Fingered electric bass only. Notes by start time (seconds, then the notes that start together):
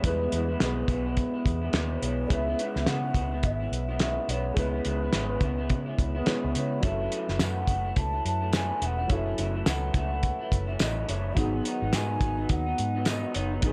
0.04 E2
0.33 E2
0.61 B1
0.88 B1
1.46 E2
1.73 D#2
2.02 B1
2.30 C#2
2.76 C#2
2.88 C#3
3.15 C#2
3.44 G#1
3.72 B1
4.28 B1
4.57 C#2
4.85 C#2
5.13 G#1
5.41 C#2
5.70 C#3
5.99 C#2
6.44 C#2
6.56 C#3
6.83 F#1
7.29 F#1
7.40 F#2
7.68 F#1
7.97 C#2
8.25 F#2
8.82 E1
9.10 F#1
9.38 F#1
9.67 C#2
9.94 C#2
10.52 F#1
10.80 A1
11.09 F#1
11.37 G#1
11.82 G#1
11.94 G#2
12.21 G#1
12.50 D#2
12.79 G#2
13.36 F#1
13.63 G#1